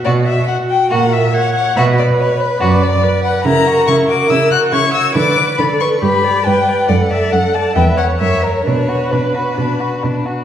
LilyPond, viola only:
\new Staff \with { instrumentName = "Viola" } { \time 4/4 \key b \minor \tempo 4 = 139 fis'2 ais'4 cis''4 | b'2 d''4 b'4 | ais'4 ais'2 cis''4 | b'4 a'4 g'4 b'4 |
a'2 b'4 ais'4 | b'2.~ b'8 r8 | }